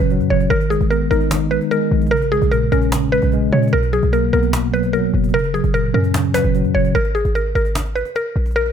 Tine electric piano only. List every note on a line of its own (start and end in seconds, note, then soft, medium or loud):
0.00 0.30 A#2 medium
0.00 0.30 C#3 medium
0.00 0.11 F#3 medium
0.00 0.50 C#4 loud
0.11 0.51 F#3 medium
0.30 0.51 C#3 medium
0.51 1.30 D#3 medium
0.70 1.50 G#3 medium
0.91 1.91 B3 medium
1.11 2.12 D#4 loud
1.32 1.91 D#3 medium
1.71 2.12 G#3 loud
1.92 2.12 D#3 medium
2.12 2.91 C#3 medium
2.32 3.12 G#3 medium
2.52 3.53 A#2 medium
2.72 3.73 C#4 loud
2.92 3.51 C#3 medium
3.13 3.32 G#3 medium
3.33 3.73 G#3 loud
3.52 3.73 C#3 medium
3.73 4.52 B2 medium
3.92 4.72 F#3 medium
4.12 5.13 A#3 medium
4.33 5.34 B3 loud
4.54 5.13 B2 medium
4.73 4.92 F#3 medium
4.93 5.34 F#3 loud
5.14 5.34 B2 medium
5.34 6.13 C#3 medium
5.54 6.33 F#3 medium
5.74 6.75 A#2 medium
5.94 6.95 C#4 loud
6.14 6.73 C#3 medium
6.34 6.54 F#3 medium
6.55 6.95 F#3 medium
6.75 6.95 C#3 medium